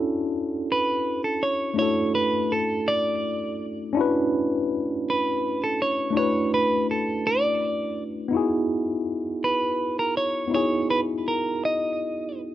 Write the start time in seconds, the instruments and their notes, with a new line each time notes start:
Already playing: tine electric piano C#4 D4 E4 F#4 A4
0.72 clean electric guitar B4
1.24 clean electric guitar A4
1.43 clean electric guitar C#5
1.74 tine electric piano A3 D4
1.78 tine electric piano E4 F#4, clean electric guitar C#5
1.82 tine electric piano A4
2.15 clean electric guitar B4
2.52 clean electric guitar A4
2.88 clean electric guitar D5
3.93 tine electric piano C#4 D4
3.97 tine electric piano E4 F#4 B4
5.10 clean electric guitar B4
5.64 clean electric guitar A4
5.82 clean electric guitar C#5
6.10 tine electric piano A3 D4
6.15 tine electric piano E4 F#4 B4, clean electric guitar C#5
6.54 clean electric guitar B4
6.91 clean electric guitar A4
7.27 clean electric guitar D5
8.28 tine electric piano B3 D#4
8.33 tine electric piano E4 F#4 G#4
9.44 clean electric guitar B4
9.99 clean electric guitar A#4
10.17 clean electric guitar C#5
10.47 tine electric piano B3 D#4 E4
10.54 tine electric piano F#4 G#4, clean electric guitar C#5
10.90 clean electric guitar B4
11.28 clean electric guitar A#4
11.65 clean electric guitar D#5